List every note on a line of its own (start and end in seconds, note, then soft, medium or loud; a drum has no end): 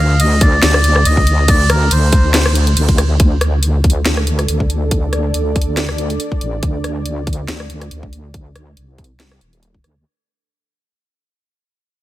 0.00 0.61 D2 loud
0.00 0.21 F5 loud
0.20 0.42 D#5 loud
0.20 closed hi-hat medium
0.20 crash soft
0.41 0.61 D5 loud
0.41 kick loud
0.41 closed hi-hat medium
0.63 1.04 D2 loud
0.63 1.07 D5 loud
0.63 snare loud
0.63 closed hi-hat medium
0.63 crash medium
0.74 cross-stick medium
0.84 closed hi-hat medium
0.96 cross-stick medium
1.05 1.90 D2 loud
1.05 1.50 D#5 loud
1.05 closed hi-hat medium
1.05 crash soft
1.17 kick medium
1.27 closed hi-hat medium
1.48 1.71 D5 loud
1.48 kick loud
1.48 closed hi-hat medium
1.48 crash medium
1.70 1.92 A#4 medium
1.70 cross-stick medium
1.70 closed hi-hat medium
1.91 2.75 D2 loud
1.91 2.52 C5 medium
1.91 closed hi-hat medium
1.91 crash medium
2.12 kick loud
2.12 closed hi-hat medium
2.34 cross-stick medium
2.34 snare loud
2.34 closed hi-hat medium
2.34 crash medium
2.46 cross-stick medium
2.55 closed hi-hat medium
2.67 closed hi-hat soft
2.77 3.18 D2 loud
2.77 closed hi-hat medium
2.77 crash soft
2.89 kick medium
2.89 closed hi-hat soft
2.98 cross-stick medium
2.98 closed hi-hat medium
3.20 4.04 D2 medium
3.20 10.02 D4 medium
3.20 10.02 A4 medium
3.20 10.02 D5 medium
3.20 kick loud
3.20 closed hi-hat medium
3.41 cross-stick medium
3.41 closed hi-hat medium
3.63 closed hi-hat medium
3.84 kick loud
3.84 closed hi-hat soft
3.90 closed hi-hat medium
4.06 4.47 D2 medium
4.06 snare loud
4.06 closed hi-hat medium
4.17 cross-stick medium
4.27 closed hi-hat medium
4.39 cross-stick medium
4.39 closed hi-hat soft
4.48 5.33 D2 loud
4.48 closed hi-hat medium
4.60 kick medium
4.70 closed hi-hat medium
4.91 kick loud
4.91 closed hi-hat medium
5.13 cross-stick medium
5.13 closed hi-hat medium
5.34 6.18 D2 medium
5.34 closed hi-hat medium
5.56 kick loud
5.56 closed hi-hat soft
5.62 closed hi-hat medium
5.77 cross-stick soft
5.77 snare loud
5.77 closed hi-hat medium
5.89 cross-stick medium
5.98 closed hi-hat medium
6.10 closed hi-hat soft
6.20 closed hi-hat medium
6.32 kick medium
6.41 6.61 A1 medium
6.41 closed hi-hat medium
6.63 7.47 D2 medium
6.63 kick loud
6.63 closed hi-hat medium
6.84 cross-stick medium
6.84 closed hi-hat soft
7.06 closed hi-hat medium
7.27 kick loud
7.27 closed hi-hat soft
7.33 closed hi-hat medium
7.48 7.90 D2 medium
7.48 snare loud
7.48 closed hi-hat medium
7.60 cross-stick medium
7.70 closed hi-hat soft
7.82 cross-stick medium
7.82 closed hi-hat soft
7.91 8.75 D2 loud
7.91 closed hi-hat medium
8.03 kick medium
8.13 closed hi-hat soft
8.34 kick loud
8.34 closed hi-hat medium
8.56 cross-stick medium
8.56 closed hi-hat soft
8.77 9.40 C2 medium
8.77 closed hi-hat medium
8.98 kick loud
8.98 closed hi-hat soft
9.04 closed hi-hat medium
9.20 cross-stick soft
9.20 snare loud
9.20 closed hi-hat medium
9.31 cross-stick medium
9.41 9.83 D#1 medium
9.41 closed hi-hat soft
9.53 closed hi-hat soft
9.63 closed hi-hat medium
9.74 kick medium
9.84 10.04 D2 medium
9.84 cross-stick medium
9.84 closed hi-hat soft